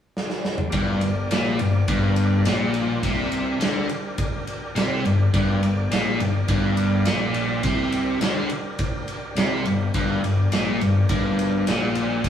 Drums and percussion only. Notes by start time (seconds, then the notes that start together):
0.17 snare
0.30 snare
0.45 snare
0.58 mid tom
0.72 kick, ride
1.01 ride
1.31 snare, ride
1.59 ride
1.88 kick, ride
2.16 ride
2.45 snare, ride
2.74 ride
3.03 kick, ride
3.32 ride
3.61 snare, ride
3.89 ride
4.18 kick, ride
4.47 ride
4.76 snare, ride
5.05 ride
5.34 kick, ride
5.63 ride
5.92 snare, ride
6.20 ride
6.48 kick, ride
6.77 ride
7.05 snare, ride
7.34 ride
7.63 kick, ride
7.92 ride
8.21 snare, ride
8.50 ride
8.79 kick, ride
9.08 ride
9.36 snare, ride
9.65 ride
9.94 kick, ride
10.24 ride
10.52 snare, ride
10.81 ride
11.09 kick, ride
11.39 ride
11.67 snare, ride
11.95 ride
12.24 kick, ride